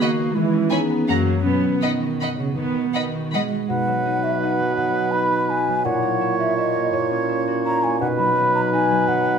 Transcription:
Already playing: D#3 D#4 F#4 B4
0.01 A#3 F#4 D#5 F#5 B5
0.19 B4
0.35 E3 G#3 E4
0.53 C#4
0.70 B3 D#4 G#4 C#5 G#5 B5
0.90 B4
1.08 F#2 F#3 A#3 C#4 C#5 F#5 A#5
1.27 C#4 F#4
1.44 B2 F#3 B3 C#4
1.64 B3
1.81 D#3 B3 D#4 D#5 F#5 B5
2.02 F#4
2.21 B4 D#5 F#5 B5
2.39 C#3 F#4
2.57 B2 D#3 B3
2.76 B3
2.95 D#3 D#4 D#5 F#5 B5
3.15 F#4
3.33 G#3 B4 D#5 F#5 B5
3.52 F#4
3.69 B2 D#4 B4 F#5
3.87 F#3
4.06 D#4
4.24 F#4 E5
4.43 D#4 F#5
4.61 F#3
4.77 B2 F#5
4.95 B3
5.11 D#4 B5
5.32 F#4
5.50 D#4 G#5
5.68 F#3
5.85 A#2 E4 C#5 F#5
6.02 A#3
6.21 E4
6.39 F#4 E5
6.58 E4 D#5
6.76 A#3
6.93 A#2 C#5
7.10 C#4
7.29 E4
7.48 F#4
7.66 E4 A#5
7.84 A#3 G#5
8.01 B2 D#4 B4 F#5
8.18 F#3 B5
8.37 D#4
8.55 F#4 A#5
8.73 D#4 G#5
8.91 F#3
9.08 B2 F#5
9.25 B3

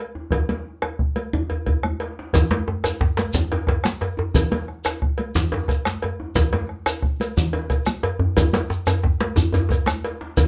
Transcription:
0.15 djembe tone
0.31 bombo low, cowbell, djembe slap, low conga, djembe bass
0.49 cowbell, djembe slap, high conga
0.66 djembe slap
0.82 bombo rim, cowbell, high conga, djembe tone
0.99 bombo low
1.16 cowbell, high conga
1.33 low conga, djembe bass
1.50 cowbell, high conga, djembe bass
1.66 bombo low, cowbell, high conga, djembe bass
1.83 bombo rim, high conga, djembe bass
2.00 bombo rim, cowbell, djembe slap
2.19 djembe slap
2.33 bombo low, cowbell, djembe slap, djembe tone, low conga, djembe bass, shekere
2.51 cowbell, djembe slap, high conga
2.68 bombo rim, djembe slap, djembe tone
2.84 bombo rim, cowbell, djembe tone, shekere
2.86 djembe tone
3.01 bombo rim, bombo low, djembe tone
3.17 cowbell, djembe slap, high conga, shekere
3.33 djembe slap, djembe tone, djembe bass, low conga, shekere
3.52 cowbell, djembe slap, djembe tone
3.67 bombo rim, bombo low, cowbell, djembe slap, djembe tone
3.84 bombo rim, djembe slap, high conga, shekere
4.01 bombo rim, cowbell, djembe tone
4.17 djembe tone
4.19 djembe tone
4.34 bombo low, cowbell, djembe slap, djembe bass, low conga, shekere
4.52 cowbell, djembe slap, high conga
4.68 bombo rim, djembe slap
4.85 bombo rim, cowbell, djembe tone, shekere
5.02 bombo rim, bombo low, djembe slap
5.18 cowbell, high conga
5.35 djembe slap, djembe bass, low conga, shekere
5.52 cowbell, djembe slap, djembe tone
5.54 djembe tone
5.68 bombo rim, bombo low, cowbell, djembe slap, shekere
5.85 bombo rim, djembe slap, high conga, shekere
6.02 bombo rim, cowbell, djembe tone
6.20 djembe tone
6.35 bombo low, cowbell, djembe slap, djembe bass, low conga, shekere
6.53 cowbell, djembe slap, djembe tone, high conga
6.69 bombo rim, djembe slap
6.86 bombo rim, cowbell, djembe tone, shekere
7.02 bombo rim, bombo low, djembe slap
7.20 cowbell, high conga, shekere
7.37 djembe slap, djembe bass, low conga, shekere
7.53 cowbell, djembe slap, djembe tone
7.70 bombo rim, bombo low, cowbell, djembe slap, shekere
7.86 bombo rim, djembe slap, high conga, shekere
8.03 bombo rim, cowbell, djembe tone
8.19 djembe tone, djembe bass
8.37 bombo low, cowbell, djembe tone, djembe bass, low conga, shekere
8.53 cowbell, djembe slap, high conga, shekere
8.70 djembe tone, shekere
8.87 bombo rim, cowbell, high conga, djembe tone, djembe bass, shekere
9.03 bombo low, djembe tone
9.20 bombo rim, cowbell, djembe slap, high conga
9.36 bombo rim, djembe tone, high conga, djembe bass, low conga, shekere
9.53 cowbell, djembe slap, high conga, djembe tone, djembe bass, shekere
9.69 bombo low, cowbell, djembe tone, shekere
9.86 bombo rim, djembe slap, high conga, djembe bass, shekere
10.04 cowbell, djembe slap
10.21 djembe slap
10.37 bombo low, cowbell, djembe slap, low conga, djembe bass, shekere

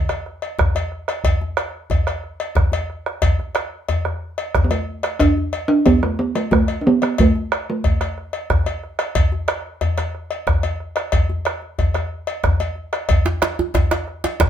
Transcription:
Already playing: D3
0.09 bombo rim, cowbell, djembe tone
0.26 bombo rim
0.42 cowbell
0.59 bombo rim, bombo low, djembe slap, djembe bass
0.75 cowbell, djembe tone
0.92 bombo rim
1.08 bombo rim, cowbell
1.24 bombo low, cowbell, djembe slap, djembe bass
1.41 djembe tone
1.57 bombo rim, cowbell, djembe slap
1.90 bombo low, cowbell, djembe slap, djembe bass
2.07 bombo rim, cowbell
2.23 bombo rim
2.40 cowbell
2.55 bombo rim, bombo low, djembe slap, djembe bass
2.72 cowbell, djembe tone
2.90 bombo rim
3.06 bombo rim
3.22 bombo rim, bombo low, cowbell, djembe slap, djembe bass
3.39 bombo rim, djembe tone
3.55 bombo rim, cowbell, djembe slap
3.89 cowbell, djembe slap, djembe bass
4.05 bombo rim, djembe tone
4.38 cowbell
4.55 bombo rim, bombo low, djembe slap, djembe bass
4.64 B3
4.71 A3, cowbell, djembe slap, djembe tone
5.03 bombo rim, cowbell
5.19 D4, bombo low, cowbell, djembe slap, djembe bass
5.37 djembe tone
5.53 cowbell, djembe slap
5.68 D4
5.86 B3, bombo low, cowbell, djembe slap, djembe bass
6.02 A3, bombo rim, djembe tone
6.19 B3, bombo rim
6.35 A3, cowbell
6.51 A3, bombo rim, bombo low, djembe slap, djembe bass
6.68 cowbell, djembe tone
6.81 D4
6.86 B3, bombo rim
7.02 B3, bombo rim, cowbell
7.18 A3, bombo low, cowbell, djembe slap, djembe bass
7.35 djembe tone
7.51 bombo rim, cowbell, djembe slap
7.70 A3
7.84 bombo low, cowbell, djembe slap, djembe bass
8.01 bombo rim, cowbell, djembe tone
8.18 bombo rim
8.33 cowbell
8.50 bombo rim, bombo low, djembe slap, djembe bass
8.66 cowbell, djembe tone
8.83 bombo rim
8.99 bombo rim, cowbell
9.15 bombo low, cowbell, djembe slap, djembe bass
9.32 djembe tone
9.48 bombo rim, cowbell, djembe slap
9.81 cowbell, djembe slap, djembe bass
9.98 bombo rim, cowbell, djembe tone
10.14 bombo rim
10.31 cowbell
10.47 bombo rim, bombo low, djembe slap, djembe bass
10.63 cowbell, djembe tone
10.80 bombo rim
10.96 bombo rim, cowbell
11.12 bombo low, cowbell, djembe slap, djembe bass
11.29 djembe slap, djembe tone
11.45 bombo rim, cowbell
11.62 djembe slap
11.79 bombo rim, bombo low, cowbell, djembe slap, djembe bass
11.94 bombo rim, cowbell, djembe tone
12.27 cowbell, djembe slap
12.44 bombo rim, bombo low, djembe slap, djembe bass
12.60 cowbell, djembe tone
12.75 djembe slap
12.93 bombo rim, cowbell
13.09 bombo low, cowbell, djembe slap, djembe bass
13.25 djembe slap, djembe tone
13.42 bombo rim, cowbell, djembe slap
13.59 djembe tone
13.74 bombo low, cowbell, djembe slap, djembe bass
13.91 bombo rim, cowbell, djembe slap, djembe tone
14.07 bombo rim
14.24 cowbell, djembe slap
14.40 bombo rim, bombo low, djembe slap, djembe bass

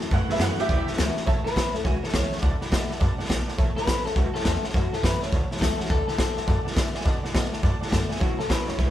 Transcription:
Already playing: A5
0.00 C#4 F#4, snare
0.11 F#2 A2 E3 F#5, kick, snare
0.28 C#3 F#3 B3 E5, muted upright bass stroke, snare
0.35 E3, snare
0.39 F#2 A2 F#3 A3 C#4 F#4 F#5, snare, hi-hat pedal
0.57 C#4 F#4 G4 E5, muted upright bass stroke, snare
0.68 D2 A2 E3, kick, snare
0.87 muted upright bass stroke, snare
0.93 A2, snare
0.97 C#2 E3 F#3 A3 C#4 F#4, snare, hi-hat pedal
1.16 C#4 F#4, muted upright bass stroke, snare
1.26 A1 A2 C#5 E5 A5, kick, snare
1.44 B4 C#5 E5 A5, muted upright bass stroke, snare
1.55 C#2 E3 A3 C#4 F#4 C#5 E5 A5, kick, snare, hi-hat pedal
1.73 E2 C#4 F#4 A4 C#5 E5 A5, snare
1.84 C#2 E2 F#4 C#5 E5 G#5, kick, snare
2.02 A4 C#5 E5 A5, muted upright bass stroke, snare
2.08 snare
2.13 C#2 E3 A3 C#4 F#4 C#5 E5 A5, kick, snare, hi-hat pedal
2.31 C#4 F#4 C#5 E5 A5, muted upright bass stroke, snare
2.38 snare
2.42 D2 D3 D5 F#5 A5, kick, snare
2.61 D5 F#5 B5, snare
2.71 B2 D3 A3 B3 F#4 D5 F#5 B5, kick, snare, hi-hat pedal
2.89 B3 F#4 D5 F#5 A5, muted upright bass stroke, snare
3.00 F#2 C#3 D5 F#5 A5, kick, snare
3.18 D5 F#5 A5, muted upright bass stroke, snare
3.25 snare
3.29 B1 B2 D5 F#5 A5, kick, snare, hi-hat pedal
3.47 D5 F#5 A5, snare
3.58 A1 A2 C#5 E5 A5, kick, snare
3.76 B4 C#5 E5 A5, muted upright bass stroke, snare
3.86 C#2 E3 A3 C#4 F#4 C#5 E5 A5, kick, snare, hi-hat pedal
4.05 E2 C#4 F#4 A4 C#5 E5 A5, snare
4.16 C#2 E2 F#4 C#5 E5 A5, kick, snare
4.34 A4 C#5 E5 A5, muted upright bass stroke, snare
4.40 snare
4.44 E2 E3 A3 C#4 F#4 A4 C#5 E5 A5, kick, snare, hi-hat pedal
4.63 C#4 F#4 C#5 E5 F#5, muted upright bass stroke, snare
4.69 snare
4.74 F#2 A2 F#4 C#5 E5 A5, kick, snare
4.92 A4 C#5 E5 A5, muted upright bass stroke, snare
5.03 F#2 E3 A3 C#4 F#4 B4 C#5 E5 A5, kick, snare, hi-hat pedal
5.20 C#4 F#4 C#5 E5 A5, muted upright bass stroke, snare
5.31 D2 E2 C#5 E5 A5, kick, snare
5.50 C#5 E5 A5, snare
5.57 E3 A3, snare
5.61 C#2 C#4 F#4 A4 C#5 E5 A5, kick, snare, hi-hat pedal
5.78 F#4 C#5 E5 A5, muted upright bass stroke, snare
5.85 snare
5.90 D2 D3 A4 D5 F#5 A5, kick, snare
6.08 A4 D5 F#5 A5, muted upright bass stroke, snare
6.17 F#2 D3 A3 B3 F#4 D5 F#5 A5, kick, snare, hi-hat pedal
6.35 A2 B3 F#4 D5 F#5 A5, snare
6.47 F#2 A2 D5 F#5 A5, kick, snare
6.65 D5 F#5 A5, muted upright bass stroke, snare
6.72 D3, snare
6.76 A2 A3 B3 F#4 D5 F#5 A5, kick, snare, hi-hat pedal
6.94 B3 F#4 D5 F#5 G#5, muted upright bass stroke, snare
7.01 D5, snare
7.05 B2 D3 F#5 A5, kick, snare
7.23 D5 F#5 A5, muted upright bass stroke, snare
7.34 B2 D3 A3 B3 F#4 D5 F#5 A5, kick, snare, hi-hat pedal
7.52 D5 F#5 A5, muted upright bass stroke, snare
7.63 F#2 A2 D5 F#5 A5, kick, snare
7.81 D5 F#5 A5, muted upright bass stroke, snare
7.87 D5 F#5, snare
7.92 F#2 D3 A3 B3 F#4 A5, kick, snare, hi-hat pedal
8.09 B3 F#4 D5 F#5 G#5, muted upright bass stroke, snare
8.16 C#5, snare
8.20 A1 A2 E3 F#4 E5 A5, kick, snare
8.37 A4 C#5 E5 A5, muted upright bass stroke, snare
8.48 C#2 A2 E3 F#3 A3 C#4 F#4 B4 C#5 E5 A5, kick, snare, hi-hat pedal
8.67 E2 C#4 F#4 C#5 E5 B5, snare
8.77 C#2 E2 A2 E3 C#5 E5 B5, kick, snare

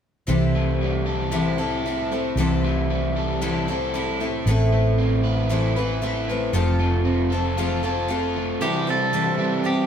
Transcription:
0.27 C2 C3 E3 G3 C4 E4 A4
0.55 A3
0.81 G3
1.06 A4
1.32 C3 E3 G3 C4 E4 A4
1.58 G3 C4 E4 A4
1.86 G3 C4 E4 A4
2.12 G3 A3 C4 E4 A4
2.36 C2 C3 E3 G3 C4
2.40 E4 A4
2.64 A3
2.90 G3
3.16 A4
3.42 C3 E3 G3 C4 E4 A4
3.68 G3 C4 E4 A4
3.94 G3 C4 E4 A4
4.20 G3 A3 C4 E4 A4
4.46 A1 A2 E3 A3 C4 E4 B4
4.72 A3
4.98 C4
5.24 B4
5.49 A2 E3 A3 C4 E4 B4
5.76 A3 C4 E4 B4
6.02 A3 C4 E4 B4
6.29 A3 C4 E4 B4
6.53 F1 F3 A3 C4 F4 A4
6.80 A3
7.05 C4
7.32 C4 F4 A4
7.58 F3 A3 C4 F4 A4
7.83 C4 F4 A4
8.08 A3 C4 F4 A4
8.36 A3
8.61 C3 E3 G3 C4 E4 G4 A4
8.87 G3 C4 E4 A4
9.13 C3 E3 G3 C4 E4 A4
9.38 C3 E3 G3 C4 E4
9.64 G3 C4 E4 G4 A4

